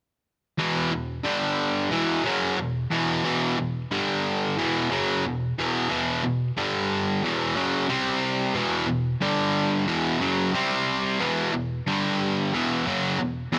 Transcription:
0.58 E2 B2 E3
0.92 E2 B2
1.24 G2 D3 G3
1.91 E2 B2 E3
2.25 F#2 C#3 F#3
2.59 E2 B2
2.91 E2 B2 E3
3.25 E2 B2 E3
3.59 E2 B2
3.91 G2 D3 G3
4.57 E2 B2 E3
4.91 F#2 C#3 F#3
5.25 E2 B2
5.58 E2 B2 E3
5.89 E2 B2 E3
6.24 E2 B2
6.57 G2 D3 G3
7.23 E2 B2 E3
7.56 F#2 C#3 F#3
7.88 C3 G3 C4
8.55 E2 B2 E3
8.87 E2 B2
9.21 G2 D3 G3
9.87 E2 B2 E3
10.19 F#2 C#3 F#3
10.54 C3 G3 C4
11.19 E2 B2 E3
11.53 E2 B2
11.87 G2 D3 G3
12.53 E2 B2 E3
12.87 F#2 C#3 F#3
13.19 E2 B2
13.52 E2 B2 E3

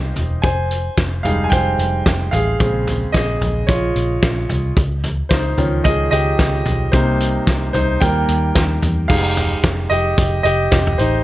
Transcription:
Already playing: C2 G3 A#3 C4 D#4 G4 G#4 C5 D#5 F5 G5
0.16 E1, closed hi-hat, floor tom
0.42 F1 C5 G#5, kick, closed hi-hat
0.71 closed hi-hat
0.98 F1, kick, snare, closed hi-hat
1.23 F1 G3 G#3 D#4 G#4 F5, closed hi-hat, floor tom
1.44 G#5
1.50 F1 C5 G5, kick, closed hi-hat
1.79 F1, closed hi-hat
2.06 F1, kick, snare, closed hi-hat
2.31 A1 G#4 F5, closed hi-hat, floor tom
2.59 A#1 C#3 G#3 C4, kick, closed hi-hat
2.87 closed hi-hat, floor tom
3.12 A#1 G#4 D#5, kick, snare, closed hi-hat
3.41 A#1, closed hi-hat, floor tom
3.67 A#1 F4 C#5, kick, closed hi-hat
3.96 A#1, closed hi-hat
4.23 A#1, kick, snare, closed hi-hat
4.50 C2, closed hi-hat, floor tom
4.77 C#2, kick, closed hi-hat
5.04 closed hi-hat, floor tom
5.29 C#2 D#4 C5, kick, snare, closed hi-hat
5.57 C#2 D#3 F3 C#4, closed hi-hat, floor tom
5.84 C#2 G#4 D#5, kick, closed hi-hat
6.11 C#2 G4 D#5, closed hi-hat
6.39 C#2, kick, snare, closed hi-hat
6.66 B1, closed hi-hat, floor tom
6.92 C2 C3 G3 A#3 D#4 C5, kick, closed hi-hat
7.20 closed hi-hat
7.47 C2, kick, snare, closed hi-hat
7.73 C2 D#4 C5, closed hi-hat, floor tom
8.01 D#2 D#3 G3 A#3 A#4 G5, kick, closed hi-hat
8.28 D#2, closed hi-hat
8.55 D#2, kick, snare, closed hi-hat
8.82 E2, closed hi-hat, floor tom
9.08 F1 G#3 D#4 G4 G#4 F5, kick, crash
9.37 closed hi-hat, floor tom
9.64 F1, kick, snare, closed hi-hat
9.90 F1 G4 D#5, closed hi-hat
10.18 F1, kick, closed hi-hat
10.43 F1 G4 D#5, closed hi-hat
10.72 F1, kick, snare, closed hi-hat
10.87 floor tom
10.98 A1 D#4 C5, closed hi-hat

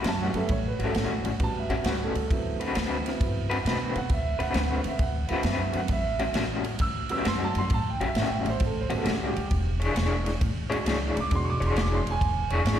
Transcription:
0.04 F#2 A2 G3 C#4 F#4 A5, snare, ride
0.23 F#5
0.33 F#2 G3 B3 C#4 A4 E5, ride
0.49 A1 C#5, kick, ride
0.68 B4
0.79 A1 A2 G3 C#4 F#4, ride
0.85 A4
0.94 A1 A2 G3 C#4 F#4, snare, ride
1.24 A1, ride
1.40 A1 G3 B3 C#4 F#4 A5, kick, ride
1.58 E5
1.69 A1 A2 G3 C#4 F#4, ride
1.84 C#2 A2 G3 B3 C#4 F#4 B4, snare, ride
2.03 A4
2.15 C#2, ride
2.30 D2 F#3 B3 C4 E4, kick, ride
2.60 D3 C4 F#4 B4, ride
2.75 D2 D3 C4 F#4 B4, snare, ride
3.06 F#3 B3 C4 E4, snare, ride
3.20 G2, kick, ride
3.50 D3 C4 F#4 B4, ride
3.64 B2 D3 C4 F#4 B4, snare, ride
3.92 F5, ride
3.96 B2 F#5
4.10 D2 E5, kick, ride
4.39 D2 D3 C4 F#4 B4 F#5, ride
4.54 D2 D3 C4 F#4 B4 F#5, snare, ride
4.84 D2 E5, ride
4.99 D2 F#5, kick, ride
5.27 D2 D3 F#3 B3 C4 E4 F#4 B4 F5, ride
5.33 F#5
5.43 F#2 C4 B4 E5, snare, ride
5.73 F#2 F#5, ride
5.88 A1 E5, kick, ride
6.19 A2 G3 C#4 F#4, ride
6.34 A1 A2 G3 C#4 F#4, snare, ride
6.64 ride
6.79 D2 E6, kick, ride
7.09 A2 G3 B3 C#4 F#4 E6, ride
7.25 F#2 A2 G3 C#4 F#4 C6, snare, ride
7.44 A5
7.55 F#2 C6, ride
7.70 A1 A5, kick, ride
7.90 G5
8.00 A1 A2 G3 C#4 F#4, ride
8.04 E5
8.15 A1 A2 G3 C#4 F#4, snare, ride
8.21 G5
8.34 E5
8.45 A1 C5, ride
8.60 A1, kick, ride
8.66 A4
8.81 C5
8.90 A1 A2 G3 B3 C#4 F#4, ride
8.97 A4
9.04 C#2 A2 G3 C#4 F#4, snare, ride
9.13 G4
9.23 F#4
9.27 G4
9.36 C#2, ride
9.51 E1, kick, ride
9.80 E3 D4 G#4 C#5, ride
9.94 E1 E3 D4 G#4 C#5, snare, ride
10.26 snare, ride
10.41 A1, kick, ride
10.70 E3 G#3 C#4 D4 F#4 G#4 C#5, ride
10.84 C#2 E3 D4 G#4 C#5, snare, ride
11.16 C#2 C#6, ride
11.20 D6
11.31 E1 G#3 C#4 D4 F#4, kick, ride
11.35 C6
11.45 C#6
11.50 D6
11.60 E1 E3 D4 G#4 C#5, ride
11.67 C6
11.75 E1 E3 D4 G#4 C#5 C#6, snare, ride
11.81 D6
11.95 C6
12.06 E1, ride
12.11 G#5
12.21 E1, kick, ride
12.50 E1 E3 D4 G#4 C#5, ride
12.65 G#1 C#5, snare, ride

